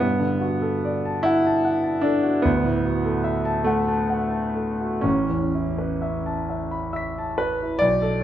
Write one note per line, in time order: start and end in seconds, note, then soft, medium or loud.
0.00 2.41 G2 soft
0.00 1.28 B3 medium
0.20 0.55 D3 soft
0.41 0.77 F#4 soft
0.62 0.99 A4 soft
0.85 1.20 D5 soft
1.05 1.40 A5 soft
1.23 2.04 E4 medium
1.23 1.59 F#5 soft
1.46 1.79 A5 soft
1.65 1.97 F#5 soft
1.84 2.17 A5 soft
2.01 2.43 D4 medium
2.01 2.37 A4 soft
2.23 2.44 F#4 soft
2.42 5.00 D2 medium
2.42 3.67 B3 medium
2.64 2.97 A2 soft
2.85 3.18 F#4 soft
3.04 3.38 A4 soft
3.24 3.59 E5 soft
3.45 3.80 A5 soft
3.64 5.02 A3 medium
3.64 4.02 F#5 soft
3.88 4.24 A5 soft
4.10 4.46 F#5 soft
4.31 4.69 A5 soft
4.55 4.94 A4 soft
4.81 5.05 F#4 soft
5.01 7.78 A1 soft
5.01 6.46 C#4 medium
5.29 5.68 E2 soft
5.55 5.92 E4 soft
5.78 6.15 B4 soft
6.02 6.38 E5 soft
6.26 6.62 A5 soft
6.50 6.85 E5 soft
6.71 7.08 B5 soft
6.93 7.30 E5 soft
6.93 7.78 E6 soft
6.93 7.80 B6 soft
7.18 7.54 A5 soft
7.38 7.74 B4 medium
7.62 7.83 E4 soft
7.79 8.24 B1 medium
7.79 8.24 D5 loud
8.02 8.24 A4 soft